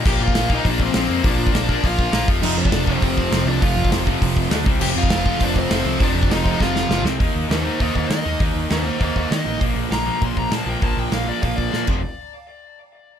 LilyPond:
<<
  \new Staff \with { instrumentName = "Lead electric guitar" } { \time 4/4 \key ees \lydian \tempo 4 = 201 <g' g''>8 <f' f''>4 <ees' ees''>8 <d' d''>8 <c' c''>4. | <d' d''>4 <d' d''>4 <f' f''>4. r8 | <ees' ees''>8 <d' d''>4. <c' c''>4. <d' d''>8 | <f' f''>4 r2. |
<g' g''>8 <f' f''>4. <d' d''>8 <c' c''>4. | <d' d''>4 <ees' ees''>4 <f' f''>4. r8 | r4 <ees' c''>8 <ees' c''>8 <c'' ees''>8 <c'' ees''>8 ees''4 | r4 <ees' c''>8 <ees' c''>8 <c'' ees''>8 <c'' ees''>8 ees''4 |
r4 bes''4 c'''8 bes''8 a''8 g''8 | a''8 g''8 f''8 d''8 f''8 d''4 r8 | r1 | }
  \new Staff \with { instrumentName = "Distorted electric guitar" } { \clef bass \time 4/4 \key ees \lydian <bes, f bes>4 <bes, f bes>8 <bes, f bes>8 <bes, f bes>4 <bes, f bes>8 <bes, f bes>8 | <bes, f bes>4 <bes, f bes>8 <bes, f bes>8 <bes, f bes>4 <bes, f bes>8 <f, c f>8 | <f, c f>4 <f, c f>8 <f, c f>8 <f, c f>4 <f, c f>8 <f, c f>8 | <f, c f>4 <f, c f>8 <f, c f>8 <f, c f>4 <d a d'>8 <c g c'>8 |
<f, c f>4 <f, c f>8 <f, c f>8 <f, c f>4 <f, c f>8 <f, c f>8 | <f, c f>4 <f, c f>8 <f, c f>8 <f, c f>4 <f, c f>8 <c g c'>8 | <ees bes ees'>4 <ees bes ees'>8 <ees bes ees'>8 <ees bes ees'>4 <ees bes ees'>8 <ees bes ees'>8 | <ees bes ees'>4 <ees bes ees'>8 <ees bes ees'>8 <ees bes ees'>4 <ees bes ees'>8 <ees bes ees'>8 |
<bes, f bes>4 <bes, f bes>8 <bes, f bes>8 <bes, f bes>4 <bes, f bes>8 <bes, f bes>8 | <bes, f bes>4 <bes, f bes>8 <bes, f bes>8 <bes, f bes>4 <bes, f bes>8 <f, c f>8 | r1 | }
  \new Staff \with { instrumentName = "Overdriven electric guitar" } { \clef bass \time 4/4 \key ees \lydian r1 | r1 | <f, c f>4 <f, c f>8 <f, c f>8 <f, c f>4 <f, c f>8 <f, c f>8 | <f, c f>4 <f, c f>8 <f, c f>8 <f, c f>4 <d a d'>8 <c g c'>8 |
<f, c f>4 <f, c f>8 <f, c f>8 <f, c f>4 <f, c f>8 <f, c f>8 | <f, c f>4 <f, c f>8 <f, c f>8 <f, c f>4 <f, c f>8 <c g c'>8 | <ees bes ees'>4 <ees bes ees'>8 <ees bes ees'>8 <ees bes ees'>4 <ees bes ees'>8 <ees bes ees'>8 | <ees bes ees'>4 <ees bes ees'>8 <ees bes ees'>8 <ees bes ees'>4 <ees bes ees'>8 <ees bes ees'>8 |
<bes, f bes>4 <bes, f bes>8 <bes, f bes>8 <bes, f bes>4 <bes, f bes>8 <bes, f bes>8 | <bes, f bes>4 <bes, f bes>8 <bes, f bes>8 <bes, f bes>4 <bes, f bes>8 <f, c f>8 | r1 | }
  \new Staff \with { instrumentName = "Distorted electric guitar" } { \clef bass \time 4/4 \key ees \lydian <bes, f bes>4. <bes, f bes>4. <bes, f bes>4 | <bes, f bes>4. <bes, f bes>4. <bes, f bes>8 r8 | <f, c f>4. <f, c f>4. <f, c f>4 | <f, c f>4. <f, c f>4. r4 |
<f, c f>4. <f, c f>4. <f, c f>4 | <f, c f>4. <f, c f>4. <f, c f>8 r8 | r1 | r1 |
r1 | r1 | r1 | }
  \new Staff \with { instrumentName = "Picked electric bass" } { \clef bass \time 4/4 \key ees \lydian bes,,8 bes,8 bes,,4 bes,,4 bes,,8 f,8 | bes,,8 bes,8 bes,,4 bes,,4 bes,,8 f,,8 | f,,8 f,8 f,,4 f,,4 f,,8 c,8 | f,,8 f,8 f,,4 f,,4 d,8 c,8 |
f,,8 f,8 f,,4 f,,4 f,,8 c,8 | f,,8 f,8 f,,4 f,,4 f,,8 c,8 | ees,8 ees,8 ees,4 ees,8 ees,8 ees8 ees,8 | ees,8 ees,8 ees,4 ees,8 ees,8 ees8 a,,8 |
bes,,8 bes,,8 bes,,4 bes,,8 bes,,8 bes,8 bes,,8 | bes,,8 bes,,8 bes,,4 bes,,8 bes,,8 bes,8 f,,8 | r1 | }
  \new DrumStaff \with { instrumentName = "Drums" } \drummode { \time 4/4 <cymc bd>8. bd16 <hho sn>8 bd8 <hho bd>8 bd8 <hho sn>4 | <hho bd>8. bd16 <hho sn>8 bd8 <hho bd>8 bd8 <hho sn>8 bd8 | cymc8. bd16 <hho sn>8 bd8 <hho bd>8 bd8 <hho sn>4 | <hho bd>8. bd16 <hho sn>8 bd8 <hho bd>8 bd8 <hho sn>8 bd8 |
cymc8. bd16 <hho sn>8 bd8 <hho bd>8 bd8 <hho sn>4 | <hho bd>8. bd16 <hho sn>8 bd8 <bd sn>8 sn8 sn8 sn8 | <hho bd>4 <hho sn>4 <hho bd>8 bd8 <hho sn>4 | <hho bd>4 <hho sn>4 <hho bd>8 bd8 <hho sn>4 |
<hho bd>4 <hho sn>4 <hho bd>8 bd8 <hho sn>4 | <hho bd>4 <hho sn>4 <hho bd>8 bd8 sn8 <cymc bd>8 | r4 r4 r4 r4 | }
>>